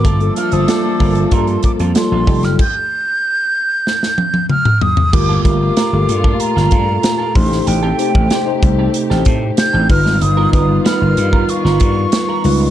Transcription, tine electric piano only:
X:1
M:4/4
L:1/16
Q:1/4=94
K:Gm
V:1 name="Tine electric piano"
z [G,B,FA] z [G,B,Fc] [G,B,FA] z [G,B,FA]4 z2 [G,B,FA]2 [G,EFA]2 | z16 | [A,FGB] z [A,FGB]2 z [A,FGA]4- [A,FGA] z4 [A,EGc]2- | [A,EGc] z [A,EGc]2 z [A,EGc]4- [A,EGc] z4 [G,^DF=B]2- |
[G,^DF=B] z [G,DFB]2 z [G,DF^AB]4- [G,DFAB] z4 [G,DFB] z |]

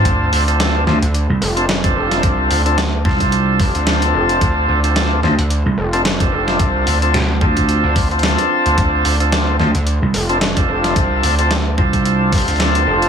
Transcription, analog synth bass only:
X:1
M:4/4
L:1/16
Q:"Swing 16ths" 1/4=110
K:Dm
V:1 name="Analog synth bass" clef=bass
D,,2 D,,4 z D,,2 z F,,,4 F,,,2 | C,,2 D,,4 z4 G,,, D,,3 F,,,2 | D,,2 D,,4 z D,,2 z F,,,4 F,,,2 | C,,2 D,,4 z3 D,,4 z2 D,, |
D,,2 D,,4 z D,,2 z F,,,4 F,,,2 | C,,2 D,,4 z4 G,,, D,,3 F,,,2 |]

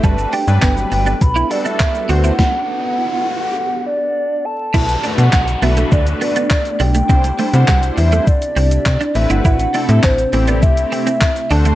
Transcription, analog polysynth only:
X:1
M:4/4
L:1/16
Q:1/4=102
K:Ador
V:1 name="Analog polysynth"
[G,DFB]2 z [F,G,DB]4 z3 [G,DFA]4 [A,DFc]2 | z16 | [A,DFB] z [A,DFB]3 z [A,DFB]4- [A,DFB] z4 z | [G,DEc] z [G,DEc] [G,DEc]4- [G,DEc] z6 [A,CEB]2- |
[A,CEB] z [A,CEA]3 z [A,CEG]4- [A,CEG] z3 [A,DFc]2 |]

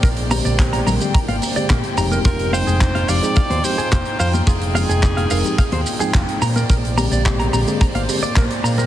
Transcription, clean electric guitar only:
X:1
M:4/4
L:1/16
Q:1/4=108
K:Fdor
V:1 name="Clean electric guitar"
B z b d z b b z b f z d B z b B | F z f A z f f z f c z A F z f F | F z f A z f f z f c z A F z b B | B z b d z b b z b f z d B z b B |]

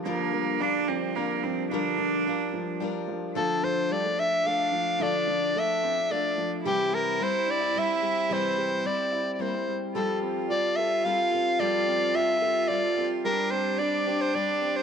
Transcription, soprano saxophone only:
X:1
M:3/4
L:1/16
Q:1/4=109
K:Dm
V:1 name="Soprano saxophone"
z12 | z12 | A2 c2 d2 e2 f4 | d4 e4 d3 z |
G2 B2 c2 d2 e4 | c4 d3- d/2 d/2 c3 z | A2 z2 d2 e2 f4 | d4 e4 d3 z |
B2 c2 d3 c d3 c |]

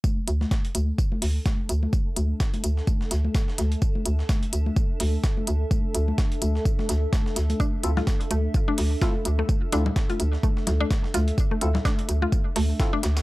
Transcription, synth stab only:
X:1
M:4/4
L:1/8
Q:"Swing 16ths" 1/4=127
K:C
V:1 name="Synth stab"
z8 | z8 | z8 | z8 |
z [CEFA] z4 [CEFA] z | z [CEFA] z6 | z [CEFA] z4 [CEFA] z |]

